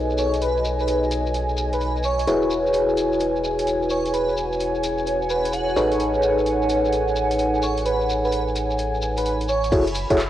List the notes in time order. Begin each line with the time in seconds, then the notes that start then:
Already playing: B1 D#4 F#4 G#4 A4 B4 C#5 D#5 G#5
0.10 shekere
0.18 C#5, shekere
0.34 closed hi-hat, shekere
0.42 B4, closed hi-hat, shekere
0.57 shekere
0.65 shekere
0.79 B4, shekere
0.88 closed hi-hat, shekere
1.04 shekere
1.11 closed hi-hat, shekere
1.27 shekere
1.34 closed hi-hat, shekere
1.49 shekere
1.57 shekere
1.73 B4, closed hi-hat, shekere
1.81 closed hi-hat, shekere
1.96 shekere
2.03 C#5, shekere
2.19 closed hi-hat, shekere
2.28 E1 E4 F#4 G#4 B4 C#5 G#5, closed hi-hat, shekere
2.42 shekere
2.50 shekere
2.64 C#5, shekere
2.73 closed hi-hat, shekere
2.89 shekere
2.97 closed hi-hat, shekere
3.13 shekere
3.20 closed hi-hat, shekere
3.36 F#5, shekere
3.44 shekere
3.59 closed hi-hat, shekere
3.67 closed hi-hat, shekere
3.82 shekere
3.90 C#5, shekere
4.06 closed hi-hat, shekere
4.14 B4, closed hi-hat, shekere
4.29 shekere
4.37 shekere
4.52 shekere
4.60 closed hi-hat, shekere
4.75 shekere
4.83 closed hi-hat, shekere
4.98 shekere
5.07 closed hi-hat, shekere
5.22 shekere
5.30 B4, shekere
5.45 closed hi-hat, shekere
5.53 F#4, closed hi-hat, shekere
5.68 shekere
5.76 A1 D#4 G#4 A4 B4 C#5, shekere
5.92 closed hi-hat, shekere
6.00 closed hi-hat, shekere
6.14 shekere
6.23 shekere
6.39 shekere
6.46 closed hi-hat, shekere
6.62 shekere
6.69 closed hi-hat, shekere
6.85 shekere
6.93 closed hi-hat, shekere
7.08 shekere
7.16 shekere
7.31 closed hi-hat, shekere
7.39 closed hi-hat, shekere
7.55 shekere
7.62 C#5, shekere
7.78 closed hi-hat, shekere
7.86 B4, closed hi-hat, shekere
8.01 shekere
8.10 shekere
8.24 B4, shekere
8.32 closed hi-hat, shekere
8.48 shekere
8.56 closed hi-hat, shekere
8.70 shekere
8.78 closed hi-hat, shekere
8.94 shekere
9.02 shekere
9.17 B4, closed hi-hat, shekere
9.25 closed hi-hat, shekere
9.40 closed hi-hat, shekere
9.48 C#5, shekere
9.63 closed hi-hat, shekere
9.72 F#1 E4 F#4 G#4 A4 C#5 B5, kick, crash, shekere
9.80 B4
9.87 closed hi-hat, shekere
9.93 E5, open hi-hat, shekere
10.10 F#1 E4 F#4 G#4 A4 C#5, kick, closed hi-hat, shekere
10.18 clap, shekere